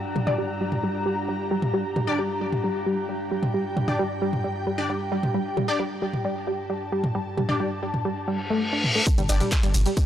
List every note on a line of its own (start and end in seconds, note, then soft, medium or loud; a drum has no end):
0.00 9.11 G2 medium
0.00 9.11 G3 medium
0.00 9.07 D4 medium
0.00 9.07 G4 medium
0.00 2.42 A#5 medium
0.16 0.20 G3 loud
0.16 mid tom medium
0.27 0.47 D4 medium
0.27 0.47 G4 medium
0.27 0.47 D5 medium
0.27 mid tom medium
0.38 0.48 G3 loud
0.61 0.65 G3 loud
0.72 mid tom medium
0.83 0.87 G3 loud
1.06 1.16 G3 loud
1.28 1.32 G3 loud
1.51 1.55 G3 loud
1.62 mid tom loud
1.74 1.84 G3 medium
1.96 2.00 G3 loud
1.96 mid tom medium
2.07 2.20 D4 medium
2.07 2.20 G4 medium
2.07 2.20 D5 loud
2.19 2.29 G3 loud
2.39 2.45 G3 medium
2.39 6.03 G5 medium
2.52 mid tom medium
2.64 2.68 G3 loud
2.86 2.96 G3 loud
3.09 3.13 G3 medium
3.31 3.35 G3 loud
3.43 mid tom loud
3.54 3.64 G3 medium
3.77 3.81 G3 loud
3.77 mid tom medium
3.88 4.08 D4 medium
3.88 4.08 G4 medium
3.88 4.08 D5 medium
3.88 mid tom medium
3.99 4.03 G3 loud
4.22 4.32 G3 loud
4.33 mid tom medium
4.44 4.48 G3 loud
4.67 4.71 G3 loud
4.78 4.91 D4 medium
4.78 4.91 G4 medium
4.78 4.91 D5 medium
4.89 4.99 G3 medium
5.12 5.16 G3 loud
5.23 mid tom loud
5.34 5.38 G3 loud
5.57 5.67 G3 loud
5.57 mid tom medium
5.68 5.81 D4 medium
5.68 5.81 G4 medium
5.68 5.81 D5 loud
5.79 5.84 G3 loud
6.00 6.06 G3 loud
6.00 9.09 A5 medium
6.13 mid tom medium
6.25 6.35 G3 loud
6.47 6.51 G3 loud
6.70 6.74 G3 loud
6.92 7.02 G3 loud
7.04 mid tom medium
7.15 7.19 G3 loud
7.37 7.41 G3 loud
7.37 mid tom medium
7.49 7.69 D4 medium
7.49 7.69 G4 medium
7.49 7.69 D5 medium
7.49 mid tom medium
7.60 7.70 G3 loud
7.83 7.87 G3 loud
7.94 mid tom medium
8.05 8.09 G3 loud
8.16 reverse cymbal medium
8.28 8.38 G3 loud
8.50 8.60 A3 medium
8.73 8.83 D4 medium
8.84 mid tom medium
8.95 9.02 A3 medium
9.07 kick loud
9.07 closed hi-hat loud
9.07 ride medium
9.07 tambourine medium
9.07 shaker soft
9.18 9.29 G1 medium
9.18 9.22 G3 loud
9.18 closed hi-hat medium
9.18 mid tom medium
9.18 ride medium
9.18 shaker soft
9.29 9.40 G1 loud
9.29 9.42 D4 medium
9.29 9.42 G4 medium
9.29 9.42 D5 loud
9.29 open hi-hat loud
9.29 ride medium
9.29 tambourine medium
9.29 shaker medium
9.40 9.51 G3 loud
9.40 closed hi-hat medium
9.40 mid tom medium
9.40 ride medium
9.40 shaker soft
9.52 kick loud
9.52 snare loud
9.52 clap loud
9.52 closed hi-hat loud
9.52 ride medium
9.52 tambourine medium
9.52 shaker soft
9.63 9.74 G1 medium
9.63 9.67 G3 loud
9.63 closed hi-hat medium
9.63 closed hi-hat soft
9.63 ride medium
9.74 9.85 G1 loud
9.74 mid tom medium
9.74 open hi-hat loud
9.74 ride medium
9.74 tambourine medium
9.74 shaker medium
9.86 9.90 G3 loud
9.86 closed hi-hat medium
9.86 ride medium
9.86 shaker soft
9.97 kick loud
9.97 closed hi-hat loud
9.97 ride medium
9.97 tambourine medium
9.97 shaker soft